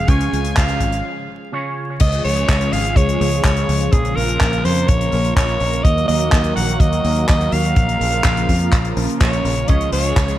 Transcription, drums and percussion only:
0.08 kick, closed hi-hat
0.21 closed hi-hat
0.33 closed hi-hat
0.45 closed hi-hat
0.57 kick, clap, closed hi-hat
0.68 closed hi-hat
0.80 kick, closed hi-hat
0.92 closed hi-hat
2.00 kick, closed hi-hat, crash
2.12 closed hi-hat
2.25 open hi-hat
2.37 closed hi-hat
2.49 kick, clap, closed hi-hat
2.61 closed hi-hat
2.73 open hi-hat
2.85 closed hi-hat
2.96 kick, closed hi-hat
3.09 closed hi-hat
3.21 open hi-hat
3.33 closed hi-hat
3.44 kick, clap, closed hi-hat
3.56 closed hi-hat
3.69 open hi-hat
3.81 closed hi-hat
3.92 kick, closed hi-hat
4.05 closed hi-hat
4.17 open hi-hat
4.29 closed hi-hat
4.41 kick, clap, closed hi-hat
4.53 closed hi-hat
4.65 open hi-hat
4.77 closed hi-hat
4.88 kick, closed hi-hat
5.01 closed hi-hat
5.12 open hi-hat
5.25 closed hi-hat
5.37 kick, clap, closed hi-hat
5.49 closed hi-hat
5.60 open hi-hat
5.73 closed hi-hat
5.85 kick, closed hi-hat
5.98 closed hi-hat
6.09 open hi-hat
6.20 closed hi-hat
6.32 kick, clap, closed hi-hat
6.44 closed hi-hat
6.57 open hi-hat
6.69 closed hi-hat
6.80 kick, closed hi-hat
6.93 closed hi-hat
7.05 open hi-hat
7.16 closed hi-hat
7.29 kick, clap, closed hi-hat
7.41 closed hi-hat
7.52 open hi-hat
7.65 closed hi-hat
7.76 kick, closed hi-hat
7.89 closed hi-hat
8.01 open hi-hat
8.12 closed hi-hat
8.24 kick, clap, closed hi-hat
8.37 closed hi-hat
8.49 kick, open hi-hat
8.61 closed hi-hat
8.72 kick, clap, closed hi-hat
8.85 closed hi-hat
8.97 open hi-hat
9.09 closed hi-hat
9.20 kick, clap, closed hi-hat
9.33 closed hi-hat
9.45 open hi-hat
9.56 closed hi-hat
9.68 kick, closed hi-hat
9.81 closed hi-hat
9.92 open hi-hat
10.05 closed hi-hat
10.17 kick, clap, closed hi-hat
10.28 closed hi-hat

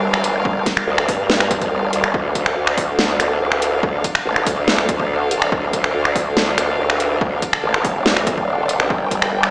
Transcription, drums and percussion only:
0.14 finger snap
0.24 closed hi-hat
0.45 kick
0.66 kick, snare, closed hi-hat
0.77 finger snap
0.98 finger snap
1.08 kick, open hi-hat
1.30 snare
1.40 finger snap
1.51 kick, closed hi-hat
1.62 kick, closed hi-hat
1.93 closed hi-hat
2.04 finger snap
2.14 kick
2.35 kick, closed hi-hat
2.46 finger snap
2.67 finger snap
2.78 kick, open hi-hat
2.99 snare
3.20 finger snap, closed hi-hat
3.52 finger snap
3.62 closed hi-hat
3.83 kick
4.04 kick, closed hi-hat
4.15 finger snap
4.36 finger snap
4.47 kick, open hi-hat
4.68 snare
4.78 finger snap
4.89 kick, closed hi-hat
5.00 kick
5.31 closed hi-hat
5.42 finger snap
5.52 kick
5.73 kick, closed hi-hat
5.84 finger snap
6.05 finger snap
6.16 kick, open hi-hat
6.37 snare
6.58 finger snap, closed hi-hat
6.90 finger snap
7.00 closed hi-hat
7.21 kick
7.42 kick, closed hi-hat
7.53 finger snap
7.74 finger snap
7.85 kick, open hi-hat
8.06 snare
8.17 finger snap
8.27 kick, closed hi-hat
8.38 kick
8.69 closed hi-hat
8.80 finger snap
8.90 kick
9.11 kick, closed hi-hat
9.22 finger snap
9.43 finger snap

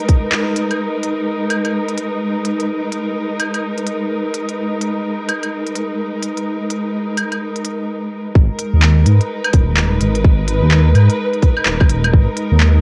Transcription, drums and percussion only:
0.09 kick, closed hi-hat
0.32 clap
0.56 closed hi-hat
0.71 closed hi-hat, claves
1.03 closed hi-hat
1.50 closed hi-hat, claves
1.65 closed hi-hat, claves
1.89 closed hi-hat
1.98 closed hi-hat
2.45 closed hi-hat
2.60 closed hi-hat
2.92 closed hi-hat
3.40 closed hi-hat, claves
3.54 closed hi-hat, claves
3.78 closed hi-hat
3.87 closed hi-hat
4.34 closed hi-hat
4.49 closed hi-hat
4.81 closed hi-hat
5.29 closed hi-hat, claves
5.43 closed hi-hat, claves
5.67 closed hi-hat
5.75 closed hi-hat
6.23 closed hi-hat
6.37 closed hi-hat
6.70 closed hi-hat
7.17 closed hi-hat, claves
7.32 closed hi-hat, claves
7.56 closed hi-hat
7.65 closed hi-hat
8.35 kick
8.59 closed hi-hat
8.82 clap
9.06 closed hi-hat
9.21 closed hi-hat
9.44 closed hi-hat, claves
9.53 kick, closed hi-hat
9.77 clap
10.01 closed hi-hat
10.15 closed hi-hat
10.24 kick
10.48 closed hi-hat
10.71 clap
10.95 closed hi-hat, claves
11.10 closed hi-hat
11.33 closed hi-hat
11.42 kick, closed hi-hat
11.57 claves
11.66 clap
11.80 kick, claves
11.89 closed hi-hat
12.04 closed hi-hat, claves
12.13 kick
12.37 closed hi-hat
12.60 clap

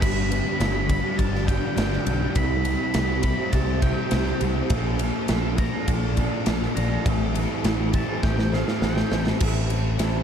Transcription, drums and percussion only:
0.02 kick, crash
0.32 ride
0.61 snare, ride
0.89 kick, ride
1.19 kick, ride
1.35 snare
1.48 kick, ride
1.77 snare, ride
1.93 snare
2.07 ride
2.35 kick, ride
2.65 ride
2.94 snare, ride
3.23 kick, ride
3.53 kick, ride
3.82 kick, ride
4.11 snare, ride
4.26 snare
4.41 ride
4.70 kick, ride
4.99 ride
5.28 snare, ride
5.58 kick, ride
5.88 kick, ride
6.17 kick, ride
6.46 snare, ride
6.62 snare
6.77 ride
7.06 kick, ride
7.35 ride
7.64 snare, ride
7.93 kick, ride
8.23 kick, snare
8.39 snare
8.53 snare
8.68 snare
8.82 snare
8.97 snare
9.12 snare
9.27 snare
9.40 kick, crash
9.70 ride
9.99 snare, ride

